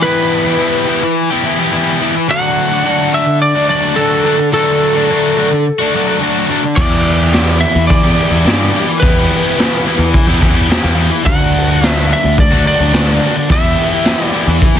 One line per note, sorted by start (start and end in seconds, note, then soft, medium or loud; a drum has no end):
0.03 0.57 E3 medium
0.03 0.47 B3 loud
0.03 0.46 E4 loud
0.03 0.45 G4 loud
0.03 1.11 B4 medium
0.46 0.58 B3 medium
0.46 0.59 E4 medium
0.46 0.60 G4 medium
0.58 0.86 E3 medium
0.58 0.87 B3 medium
0.58 0.88 E4 loud
0.58 0.89 G4 loud
0.87 1.29 E3 medium
0.87 1.02 B3 medium
0.87 1.02 E4 medium
0.87 1.02 G4 medium
1.03 muted overdriven electric guitar stroke medium
1.30 1.44 B3 medium
1.30 1.44 E4 medium
1.30 1.45 G4 medium
1.44 1.70 E3 medium
1.44 1.59 B3 medium
1.44 1.58 E4 medium
1.44 1.58 G4 medium
1.59 1.71 B3 medium
1.59 1.72 E4 medium
1.59 1.74 G4 medium
1.72 1.99 E3 loud
1.72 2.01 B3 loud
1.72 2.01 E4 loud
1.72 2.02 G4 loud
2.01 2.27 E3 medium
2.01 2.16 B3 medium
2.01 2.15 E4 medium
2.01 2.15 G4 medium
2.16 muted overdriven electric guitar stroke medium
2.28 2.84 D3 loud
2.28 2.85 F#3 loud
2.28 2.73 A3 medium
2.28 2.71 D4 loud
2.28 2.70 F#4 loud
2.28 3.16 F#5 loud
2.71 2.85 A3 medium
2.71 2.85 D4 medium
2.71 2.86 F#4 medium
2.84 3.95 D3 medium
2.84 3.11 F#3 loud
2.84 3.12 A3 loud
2.84 3.13 D4 loud
2.84 3.14 F#4 loud
3.12 3.26 F#3 medium
3.12 3.26 A3 medium
3.12 3.26 D4 medium
3.12 3.25 F#4 medium
3.12 3.39 E5 loud
3.26 muted overdriven electric guitar stroke medium
3.42 3.68 D5 loud
3.55 3.68 A3 medium
3.55 3.70 D4 medium
3.55 3.70 F#4 medium
3.69 3.95 F#3 medium
3.69 3.82 A3 medium
3.69 3.81 D4 medium
3.69 3.79 F#4 medium
3.69 3.98 D5 loud
3.80 3.95 A3 medium
3.80 3.97 D4 medium
3.80 3.96 F#4 medium
3.95 4.51 D3 medium
3.95 4.23 F#3 medium
3.95 4.23 A3 medium
3.95 4.25 D4 medium
3.95 4.25 F#4 loud
3.95 4.48 A4 medium
4.24 4.39 F#3 medium
4.24 4.38 A3 medium
4.24 4.38 D4 medium
4.24 4.38 F#4 loud
4.39 muted overdriven electric guitar stroke medium
4.52 5.09 D3 loud
4.52 5.09 F#3 loud
4.52 4.95 A3 loud
4.52 4.95 D4 loud
4.52 4.93 F#4 loud
4.52 6.18 A4 medium
4.94 5.10 A3 medium
4.94 5.11 D4 medium
4.94 5.11 F#4 medium
5.10 5.65 D3 medium
5.10 5.35 F#3 medium
5.10 5.36 A3 loud
5.10 5.38 D4 loud
5.10 5.38 F#4 loud
5.37 5.51 F#3 medium
5.37 5.51 A3 medium
5.37 5.52 D4 medium
5.37 5.51 F#4 medium
5.52 muted overdriven electric guitar stroke medium
5.79 5.94 A3 medium
5.79 5.95 D4 medium
5.79 5.95 F#4 medium
5.94 6.21 F#3 medium
5.94 6.09 A3 medium
5.94 6.09 D4 medium
5.94 6.06 F#4 medium
6.07 6.21 A3 medium
6.07 6.23 D4 medium
6.07 6.23 F#4 medium
6.21 6.75 D3 medium
6.21 6.49 F#3 medium
6.21 6.49 A3 medium
6.21 6.51 D4 loud
6.21 6.51 F#4 loud
6.50 6.64 F#3 medium
6.50 6.64 A3 medium
6.50 6.64 D4 medium
6.50 6.63 F#4 medium
6.64 muted overdriven electric guitar stroke medium
6.76 7.64 E2 loud
6.76 7.32 E3 loud
6.76 7.22 B3 loud
6.76 7.21 E4 loud
6.76 7.19 G4 loud
6.76 7.60 D5 loud
6.76 kick loud
6.76 crash loud
7.05 open hi-hat medium
7.20 7.33 B3 medium
7.20 7.34 E4 medium
7.20 7.34 G4 medium
7.32 7.60 E3 medium
7.32 7.60 B3 loud
7.32 7.61 E4 loud
7.32 7.62 G4 loud
7.32 snare loud
7.32 open hi-hat medium
7.60 8.03 E3 medium
7.60 7.75 B3 medium
7.60 7.74 E4 medium
7.60 7.73 G4 medium
7.60 7.87 E5 loud
7.60 open hi-hat medium
7.74 8.00 E2 medium
7.74 muted overdriven electric guitar stroke medium
7.87 9.04 D5 loud
7.87 kick loud
7.87 open hi-hat medium
8.03 8.16 E2 medium
8.03 8.15 B3 medium
8.03 8.16 E4 medium
8.03 8.17 G4 medium
8.16 8.43 E3 medium
8.16 8.32 B3 medium
8.16 8.30 E4 medium
8.16 8.30 G4 medium
8.16 open hi-hat medium
8.31 8.44 E2 medium
8.31 8.44 B3 medium
8.31 8.45 E4 medium
8.31 8.46 G4 medium
8.44 8.70 G2 loud
8.44 8.72 E3 medium
8.44 8.73 B3 medium
8.44 8.73 E4 loud
8.44 8.74 G4 loud
8.44 snare loud
8.44 open hi-hat medium
8.73 9.01 E3 medium
8.73 8.87 B3 medium
8.73 8.87 E4 medium
8.73 8.87 G4 loud
8.73 open hi-hat medium
8.88 muted overdriven electric guitar stroke medium
9.00 9.27 E2 loud
9.00 9.57 E3 loud
9.00 9.44 B3 loud
9.00 10.09 B4 medium
9.00 kick loud
9.00 open hi-hat medium
9.04 9.43 E4 loud
9.04 9.41 G4 loud
9.31 open hi-hat medium
9.43 9.57 B3 medium
9.43 9.58 E4 medium
9.43 9.59 G4 medium
9.58 9.84 E3 loud
9.58 9.85 B3 loud
9.58 9.86 E4 loud
9.58 9.87 G4 loud
9.58 snare loud
9.58 open hi-hat medium
9.85 10.27 E3 medium
9.85 10.00 B3 medium
9.85 9.99 E4 medium
9.85 9.99 G4 medium
9.85 open hi-hat medium
9.99 10.11 E2 medium
9.99 muted overdriven electric guitar stroke medium
10.14 kick loud
10.14 open hi-hat medium
10.26 10.77 E2 medium
10.26 10.40 B3 medium
10.26 10.41 E4 medium
10.26 10.42 G4 medium
10.41 10.67 E3 medium
10.41 10.55 B3 medium
10.41 10.54 E4 medium
10.41 10.52 G4 medium
10.41 kick medium
10.41 open hi-hat medium
10.53 10.67 B3 medium
10.53 10.69 E4 medium
10.53 10.69 G4 medium
10.68 10.94 E3 medium
10.68 10.94 B3 medium
10.68 10.95 E4 loud
10.68 10.97 G4 loud
10.68 snare loud
10.68 open hi-hat medium
10.84 11.09 E2 loud
10.95 11.22 E3 medium
10.95 11.10 B3 medium
10.95 11.09 E4 medium
10.95 11.09 G4 medium
10.95 open hi-hat medium
11.10 muted overdriven electric guitar stroke medium
11.24 12.12 D2 loud
11.24 11.78 D3 loud
11.24 11.79 F#3 loud
11.24 11.69 A3 loud
11.24 11.68 D4 loud
11.24 11.66 F#4 loud
11.24 11.88 F#5 loud
11.24 kick loud
11.24 open hi-hat medium
11.54 open hi-hat medium
11.67 11.80 A3 medium
11.67 11.80 D4 medium
11.67 11.81 F#4 medium
11.79 12.36 D3 loud
11.79 12.07 F#3 loud
11.79 12.08 A3 medium
11.79 12.08 D4 loud
11.79 12.09 F#4 loud
11.79 open hi-hat medium
11.84 snare loud
11.88 12.12 E5 loud
12.08 12.22 F#3 medium
12.08 12.22 A3 medium
12.08 12.22 D4 medium
12.08 12.21 F#4 loud
12.08 open hi-hat medium
12.13 12.40 E5 loud
12.23 12.49 D2 medium
12.23 muted overdriven electric guitar stroke medium
12.38 12.66 D5 medium
12.38 kick loud
12.38 open hi-hat medium
12.51 12.64 D2 medium
12.51 12.65 A3 medium
12.51 12.66 D4 medium
12.51 12.66 F#4 medium
12.65 12.93 F#3 medium
12.65 12.82 A3 medium
12.65 12.80 D4 medium
12.65 12.79 F#4 medium
12.65 13.52 D5 loud
12.65 open hi-hat medium
12.80 12.92 D2 medium
12.80 12.93 A3 medium
12.80 12.94 D4 medium
12.80 12.94 F#4 medium
12.93 13.18 D2 medium
12.93 13.47 D3 medium
12.93 13.21 F#3 medium
12.93 13.21 A3 loud
12.93 13.22 D4 loud
12.93 13.23 F#4 loud
12.93 snare loud
12.93 open hi-hat medium
13.21 13.36 F#3 medium
13.21 13.36 A3 medium
13.21 13.36 D4 medium
13.21 13.35 F#4 medium
13.21 open hi-hat medium
13.36 muted overdriven electric guitar stroke medium
13.49 13.74 E2 loud
13.49 14.04 E3 loud
13.49 13.93 B3 loud
13.49 13.92 E4 loud
13.49 13.90 G4 loud
13.49 14.26 E5 medium
13.49 kick loud
13.49 open hi-hat medium
13.77 open hi-hat medium
13.92 14.05 B3 medium
13.92 14.05 E4 medium
13.92 14.06 G4 medium
14.05 14.32 E3 medium
14.05 14.33 B3 loud
14.05 14.34 E4 loud
14.05 14.35 G4 loud
14.05 snare loud
14.05 open hi-hat medium
14.26 14.59 D5 medium
14.33 14.75 E3 medium
14.33 14.48 B3 medium
14.33 14.48 E4 medium
14.33 14.47 G4 medium
14.33 open hi-hat medium
14.47 14.60 E2 medium
14.47 muted overdriven electric guitar stroke soft
14.62 kick loud
14.62 open hi-hat medium
14.75 14.80 E2 medium